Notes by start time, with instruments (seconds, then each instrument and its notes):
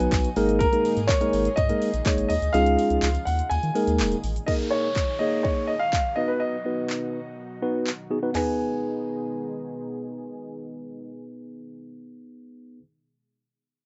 Already playing: analog synth pad B2 D#3 F#3 D#4 F#4, tine electric piano F#3 B3 D#4 F#4 B4, grand piano G#5
0.00 sub bass B1, closed hi-hat, tambourine, shaker
0.12 sub bass B1, kick, clap, closed hi-hat, tambourine, shaker
0.24 closed hi-hat, shaker
0.36 sub bass G#1, analog synth pad A#2 D#3 G#3 G#4, tine electric piano G#3 A#3 D#4 G#4 A#4, open hi-hat, tambourine, shaker
0.49 closed hi-hat, shaker
0.59 grand piano A#4, kick, closed hi-hat, tambourine, shaker
0.72 tine electric piano G#3 A#3 D#4 G#4 A#4, closed hi-hat, shaker
0.85 open hi-hat, tambourine, shaker
0.97 sub bass G#2, closed hi-hat, tambourine, shaker
1.07 grand piano C#5, kick, clap, closed hi-hat, tambourine, shaker
1.21 tine electric piano G#3 A#3 D#4 G#4 A#4, closed hi-hat, shaker
1.33 sub bass G#1, open hi-hat, tambourine, shaker
1.45 closed hi-hat, shaker
1.56 sub bass G#2, grand piano D#5, kick, closed hi-hat, tambourine, shaker
1.69 tine electric piano G#3 A#3 D#4 G#4 A#4, closed hi-hat, shaker
1.82 open hi-hat, tambourine, shaker
1.93 sub bass A#1, closed hi-hat, tambourine, shaker
2.06 tine electric piano G#3 A#3 D#4 G#4 C#5, kick, clap, closed hi-hat, tambourine, shaker
2.18 sub bass G#1, closed hi-hat, shaker
2.28 sub bass D#2, grand piano D#5, open hi-hat, tambourine, shaker
2.42 sub bass D2, closed hi-hat, tambourine, shaker
2.53 sub bass C#2, analog synth pad C#3 F3 F4, tine electric piano G#3 C#4 D#4 F4 G#4, grand piano F5, closed hi-hat, tambourine, shaker
2.66 closed hi-hat, shaker
2.79 open hi-hat, tambourine, shaker
2.90 sub bass C#2, closed hi-hat, shaker
3.02 sub bass C#2, clap, closed hi-hat, tambourine, shaker
3.15 closed hi-hat, shaker
3.25 sub bass D#2, grand piano F#5, open hi-hat, tambourine, shaker
3.39 closed hi-hat, shaker
3.50 sub bass D#2, analog synth pad A#2 D#3 G#3 G#4, grand piano G#5, closed hi-hat, tambourine, shaker
3.63 sub bass D#3, closed hi-hat, tambourine, shaker
3.75 tine electric piano G#3 A#3 D#4 G#4 A#4, open hi-hat, tambourine, shaker
3.87 sub bass D#2, closed hi-hat, tambourine, shaker
4.00 sub bass D#1, clap, closed hi-hat, tambourine, shaker
4.12 closed hi-hat, shaker
4.23 sub bass A1, open hi-hat, tambourine, shaker
4.36 closed hi-hat, shaker
4.46 analog synth pad A#2 D#3 G#3 D#4 G#4, tine electric piano A#3 D#4 G#4 A#4, grand piano D#5, kick, crash, downlifter
4.71 grand piano C#5
4.96 kick, clap
5.19 tine electric piano A#3 D#4 G#4 C#5, grand piano D#5
5.43 grand piano C#5, kick
5.67 grand piano D#5
5.79 grand piano F5
5.93 kick, clap
6.16 analog synth pad B2 F#3 D#4 F#4, tine electric piano B3 D#4 F#4 B4, grand piano D#5
6.28 grand piano B4
6.40 grand piano D#5
6.65 tine electric piano B3 D#4 F#4 B4
6.90 clap
7.62 tine electric piano B3 D#4 F#4 B4
7.87 clap
8.10 tine electric piano B3 D#4 F#4 G#4
8.22 tine electric piano B3 D#4 F#4 B4
8.33 analog synth pad B2 D#3 G#3 D#4 G#4, tine electric piano B3 D#4 G#4, grand piano G#5, snare, floor tom, crash
8.37 tine electric piano B4